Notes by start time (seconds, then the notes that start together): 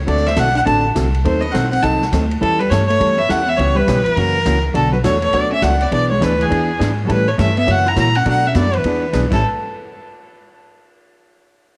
0.07 D2 D3 A3 C4 F#4 A4 D5, kick, ride
0.17 snare
0.26 C4 E5, snare
0.36 B1 D3 A3 C4 D4 F#4 A4 F#5, kick, snare, hi-hat pedal, ride
0.55 D4 F#5, ride
0.65 A1 D3 A3 C4 D4 F#4 A4 A5, kick, ride
0.95 C2 D3 A3 C4 F#4 A4, kick, snare, hi-hat pedal, ride
1.14 ride
1.25 D#2 D#3 F#3 A3 C4 D#4 A4 C5, kick, ride
1.41 B3 D#5
1.52 B1 D#3 F#3 C4 D#4 A4 F#5, kick, snare, hi-hat pedal, ride
1.70 C4 F#5, ride
1.83 C2 D#3 F#3 C4 D#4 A4 A5, kick, ride
2.02 snare
2.12 D2 D#3 F#3 C4 D#4 A4, kick, snare, hi-hat pedal, ride
2.31 ride
2.41 E2 E3 G3 C#4 E4 A4, kick, ride
2.59 G3 B4
2.70 G2 E3 G3 A3 C#4 E4 A4 C#5, kick, snare, hi-hat pedal, ride
2.87 A3 C#5, ride
3.00 F#2 E3 G3 C#4 E4 A4, kick, ride
3.17 B3 E5
3.29 E2 E3 G3 C#4 E4 A4 F#5, kick, snare, hi-hat pedal, ride
3.47 B3 E5
3.57 C#2 C#3 E3 G3 B3 C#4 G4 C#5, kick, ride
3.75 G3 B4
3.87 B1 C#3 E3 B3 C#4 G4, kick, snare, hi-hat pedal, ride
4.03 F3 B4, muted upright bass stroke, ride
4.14 F#2 C#3 E3 A#3 A#4, kick, ride
4.18 E3 C#4 F#4
4.45 C#2 C#3 E3 A#3 C#4 F#4, kick, snare, hi-hat pedal, ride
4.74 B1 B2 D3 F#3 A3 D4 F#4 A4, kick, ride
4.93 F#3 B4
5.04 E2 B2 F#3 A3 D4 F#4 C#5, kick, snare, hi-hat pedal, ride
5.22 A3 C#5, ride
5.33 D2 B2 F#3 A3 B3 D4 F#4 D5, kick, ride
5.51 C#4 E5
5.62 C#2 B2 F#3 A3 D4 F#4 F#5, kick, snare, hi-hat pedal, ride
5.81 B3 D5, ride
5.91 B1 E3 B3 D4 G#4 D5, kick, ride
6.10 G#3 C#5
6.20 D2 E3 B3 D4 G#4 B4, kick, snare, hi-hat pedal, ride
6.39 E3 G#4, ride
6.50 E2 E3 B3 D4 G#4, kick, ride
6.79 G#2 E3 B3 D4 G#4, kick, snare, hi-hat pedal, ride
7.05 E3 F#3 G3 C#4 A4
7.09 A2 E4 B4, kick, ride
7.28 A3 C#5
7.38 G2 E3 G3 A3 C#4 E4 A4 E5, kick, snare, hi-hat pedal, ride
7.57 B3 E5, ride
7.67 F#2 C#3 E3 A#3 C#4 F#4 F#5, kick, ride
7.86 E4 A#5
7.96 A#2 C#3 E3 A#3 C#4 E4 F#4 A#5, kick, snare, hi-hat pedal, ride
8.15 C#4 F#5, ride
8.25 B2 F#3 A3 D4 F#4, kick, ride
8.30 F#5
8.46 C#4 E5
8.55 F#2 B2 F#3 A3 B3 D4 F#4 D5, kick, snare, hi-hat pedal, ride
8.73 E3 B4, ride
8.84 E2 E3 B3 D4 G#4, kick, ride
9.13 B1 E3 B3 D4 G#4, kick, snare, hi-hat pedal, ride
9.31 A1 A2 E3 G3 C#4 E4 A4, kick, snare, crash